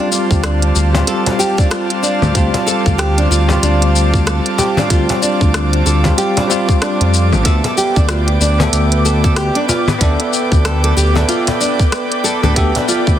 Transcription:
Already playing: G3 C4 F4 C5 F5 A5 D6
0.00 D4
0.12 F4, shaker
0.31 D2, kick, shaker
0.43 D4, cross-stick, closed hi-hat, shaker
0.62 closed hi-hat
0.75 D2, shaker
0.93 G3 C4, cajon slap, low conga, shaker
0.97 F4
1.07 A4, closed hi-hat, shaker
1.26 cajon bass, closed hi-hat
1.39 G4, shaker
1.58 D4, kick, cajon slap, shaker
1.71 F4, cross-stick, closed hi-hat, shaker
1.90 closed hi-hat
2.03 D4, shaker
2.22 D2, low conga, shaker
2.33 D2 G3 C4 F4, kick, closed hi-hat, shaker
2.54 cajon bass, closed hi-hat
2.67 A4, shaker
2.86 D2, kick, shaker
2.98 G4, cross-stick, closed hi-hat, shaker
3.18 D4, closed hi-hat
3.31 D2 F4, shaker
3.48 G3 C4, cajon slap, low conga, shaker
3.52 F4
3.63 D2 D4, closed hi-hat, shaker
3.82 closed hi-hat
3.96 shaker
4.14 kick, shaker
4.26 A4, cross-stick, closed hi-hat, shaker
4.46 closed hi-hat
4.58 G4, cajon bass, shaker
4.77 D4, cajon slap, low conga, shaker
4.88 D2 G3 C4 F4, kick, closed hi-hat, shaker
5.09 cajon bass, closed hi-hat
5.22 D4, shaker
5.41 D2, kick, shaker
5.54 cross-stick, closed hi-hat, shaker
5.73 closed hi-hat
5.86 D2 A4, shaker
6.04 G3 C4 F4, kick, cajon slap, low conga, shaker
6.18 G4, closed hi-hat, shaker
6.37 D4, cajon bass, closed hi-hat
6.47 G3 C4 F4, shaker
6.51 F4
6.69 kick, cajon slap, shaker
6.82 D4, cross-stick, closed hi-hat, shaker
7.01 F2, closed hi-hat
7.14 shaker
7.33 A1, low conga, shaker
7.43 D2 B3 A4 B4 D5 E5 G5, kick, closed hi-hat, shaker
7.64 A4, cajon bass, closed hi-hat
7.77 G4, shaker
7.96 D2 D4, kick, shaker
8.09 F4, cross-stick, closed hi-hat, shaker
8.28 closed hi-hat
8.40 D2 D4, shaker
8.58 B3 E5, cajon slap, low conga, shaker
8.62 A4
8.73 D2, closed hi-hat, shaker
8.92 closed hi-hat
9.05 A4, shaker
9.24 A4, kick, shaker
9.36 G4, cross-stick, closed hi-hat, shaker
9.55 D4, closed hi-hat
9.69 F4, cajon bass, shaker
9.88 cajon slap, low conga, shaker
9.99 D2 B3 D4 E5, kick, closed hi-hat, shaker
10.03 A4
10.20 closed hi-hat
10.33 shaker
10.52 D2, kick, shaker
10.65 A4, cross-stick, closed hi-hat, shaker
10.84 A4, closed hi-hat
10.97 D2 G4, shaker
11.14 B3 D4 A4 E5, cajon slap, low conga, shaker
11.29 F4, closed hi-hat, shaker
11.47 cajon bass, closed hi-hat
11.60 D4, shaker
11.79 kick, cajon slap, shaker
11.92 cross-stick, closed hi-hat, shaker
12.12 closed hi-hat
12.24 A4, shaker
12.43 D2 A4, low conga, shaker
12.54 D2 B3 G4 E5, kick, closed hi-hat, shaker
12.58 A4
12.75 D4, cajon bass, closed hi-hat
12.88 F4, shaker
13.07 D2, kick, shaker

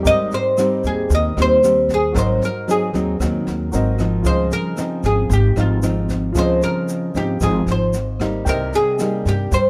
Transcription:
Already playing: G3 C4 D#4
0.03 G#1 G#2 G4 A#4 C5, kick, snare, shaker
0.07 D#5
0.32 C5, snare, shaker
0.57 G3 C4 D#4, cross-stick, snare, shaker
0.84 D#2 G#4, kick, snare, shaker
1.10 D#2 D#3, kick, snare, shaker
1.15 D#5
1.37 D#2 G3 C4 D#4, cross-stick, snare, shaker
1.42 C5
1.63 G3 C4 D#4, snare, shaker
1.89 kick, snare, shaker
1.94 G#4
2.12 G#1 G#2 F#3 C4 F#4 A#4 C5, kick, cross-stick, snare
2.16 D#4 C5 D#5, shaker
2.41 snare, shaker
2.45 A#4
2.67 F#3 C4 D#4 G#4, snare, shaker
2.93 D#2 F#3 C4 D#4, kick, snare, shaker
3.20 D#2 D#3 F#3 C4 D#4, kick, cross-stick, snare, shaker
3.47 D#2, snare, shaker
3.72 G#1 F#3 C4 D#4 F#4 A#4 C5 D#5, snare, shaker
3.99 F3 C4 D#4, kick, cross-stick, snare, shaker
4.22 C#2 C#3 F4 G#4 C5, kick, snare, shaker
4.26 C5 D#5
4.51 A#4, snare, shaker
4.77 F3 C4 D#4, cross-stick, snare, shaker
5.03 G#1 G#4, kick, snare, shaker
5.30 G#1 G#2 G4, kick, snare, shaker
5.56 G#1 F3 C4 D#4 F4, cross-stick, snare, shaker
5.82 F3 C4 D#4, snare, shaker
6.09 kick, snare, shaker
6.33 C#2 C#3 F3 C4 D#4 F4 G#4, kick, cross-stick, snare, shaker
6.37 C5 D#5
6.62 A#4, snare, shaker
6.89 snare, shaker
7.15 G#1 F3 C4 D#4 G4, kick, snare, shaker
7.41 G#1 G#2 F3 C4 D#4 G#4, kick, cross-stick, snare, shaker
7.66 G#1, snare, shaker
7.72 C5
7.93 snare, shaker
8.20 G3 A#3 D#4, kick, cross-stick, snare, shaker
8.45 C2 C3 A#4 C5 G5, kick, snare, shaker
8.49 A#4 D#5
8.73 G#4, snare, shaker
8.99 G3 A#3 D#4, cross-stick, snare, shaker
9.25 G2 G4, kick, snare, shaker
9.51 G2 C5, kick, snare, shaker

